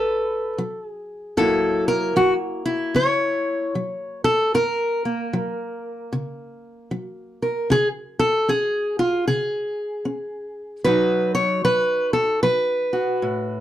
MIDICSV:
0, 0, Header, 1, 2, 480
1, 0, Start_track
1, 0, Tempo, 789474
1, 838, Time_signature, 4, 2, 24, 8
1, 8271, End_track
2, 0, Start_track
2, 0, Title_t, "Steel-string acoustic guitar"
2, 0, Program_c, 0, 25
2, 0, Note_on_c, 0, 54, 64
2, 0, Note_on_c, 0, 69, 70
2, 0, Note_on_c, 0, 71, 85
2, 321, Note_off_c, 0, 54, 0
2, 355, Note_on_c, 0, 54, 58
2, 363, Note_off_c, 0, 71, 0
2, 523, Note_off_c, 0, 69, 0
2, 523, Note_on_c, 0, 68, 70
2, 800, Note_off_c, 0, 54, 0
2, 828, Note_off_c, 0, 68, 0
2, 834, Note_on_c, 0, 42, 72
2, 836, Note_on_c, 0, 69, 100
2, 838, Note_on_c, 0, 54, 44
2, 843, Note_on_c, 0, 58, 49
2, 847, Note_on_c, 0, 64, 49
2, 1135, Note_off_c, 0, 69, 0
2, 1143, Note_on_c, 0, 70, 95
2, 1280, Note_off_c, 0, 42, 0
2, 1311, Note_off_c, 0, 54, 0
2, 1313, Note_on_c, 0, 54, 58
2, 1314, Note_off_c, 0, 70, 0
2, 1317, Note_on_c, 0, 66, 87
2, 1412, Note_off_c, 0, 66, 0
2, 1612, Note_off_c, 0, 64, 0
2, 1614, Note_on_c, 0, 64, 88
2, 1760, Note_off_c, 0, 54, 0
2, 1791, Note_on_c, 0, 49, 67
2, 1798, Note_on_c, 0, 73, 102
2, 2238, Note_off_c, 0, 49, 0
2, 2278, Note_off_c, 0, 64, 0
2, 2282, Note_on_c, 0, 54, 55
2, 2577, Note_off_c, 0, 73, 0
2, 2580, Note_on_c, 0, 69, 91
2, 2724, Note_off_c, 0, 54, 0
2, 2760, Note_off_c, 0, 69, 0
2, 2763, Note_on_c, 0, 42, 70
2, 2765, Note_on_c, 0, 70, 98
2, 3060, Note_off_c, 0, 58, 0
2, 3072, Note_on_c, 0, 58, 43
2, 3204, Note_off_c, 0, 42, 0
2, 3243, Note_on_c, 0, 54, 59
2, 3685, Note_off_c, 0, 54, 0
2, 3722, Note_off_c, 0, 70, 0
2, 3724, Note_on_c, 0, 49, 64
2, 4165, Note_off_c, 0, 49, 0
2, 4202, Note_on_c, 0, 54, 51
2, 4514, Note_on_c, 0, 70, 47
2, 4644, Note_off_c, 0, 54, 0
2, 4665, Note_off_c, 0, 70, 0
2, 4682, Note_on_c, 0, 49, 71
2, 4686, Note_off_c, 0, 58, 0
2, 4691, Note_on_c, 0, 68, 107
2, 4788, Note_off_c, 0, 68, 0
2, 4982, Note_on_c, 0, 69, 98
2, 5124, Note_off_c, 0, 49, 0
2, 5159, Note_on_c, 0, 61, 52
2, 5161, Note_off_c, 0, 69, 0
2, 5163, Note_on_c, 0, 68, 91
2, 5459, Note_off_c, 0, 68, 0
2, 5467, Note_on_c, 0, 65, 91
2, 5602, Note_off_c, 0, 61, 0
2, 5637, Note_off_c, 0, 65, 0
2, 5639, Note_on_c, 0, 68, 85
2, 5643, Note_on_c, 0, 49, 67
2, 6084, Note_off_c, 0, 49, 0
2, 6112, Note_on_c, 0, 61, 56
2, 6559, Note_off_c, 0, 61, 0
2, 6594, Note_on_c, 0, 71, 98
2, 6599, Note_off_c, 0, 68, 0
2, 6599, Note_on_c, 0, 47, 75
2, 6602, Note_on_c, 0, 54, 45
2, 6606, Note_on_c, 0, 63, 46
2, 6610, Note_on_c, 0, 66, 45
2, 6895, Note_off_c, 0, 71, 0
2, 6898, Note_on_c, 0, 73, 98
2, 7043, Note_off_c, 0, 47, 0
2, 7078, Note_off_c, 0, 54, 0
2, 7079, Note_off_c, 0, 73, 0
2, 7080, Note_on_c, 0, 54, 54
2, 7081, Note_on_c, 0, 71, 95
2, 7374, Note_off_c, 0, 71, 0
2, 7376, Note_on_c, 0, 69, 86
2, 7524, Note_off_c, 0, 54, 0
2, 7553, Note_off_c, 0, 69, 0
2, 7556, Note_on_c, 0, 71, 86
2, 7561, Note_on_c, 0, 54, 64
2, 7858, Note_off_c, 0, 66, 0
2, 7861, Note_on_c, 0, 66, 48
2, 8005, Note_off_c, 0, 54, 0
2, 8040, Note_on_c, 0, 45, 59
2, 8271, Note_off_c, 0, 45, 0
2, 8271, Note_off_c, 0, 63, 0
2, 8271, Note_off_c, 0, 66, 0
2, 8271, Note_off_c, 0, 71, 0
2, 8271, End_track
0, 0, End_of_file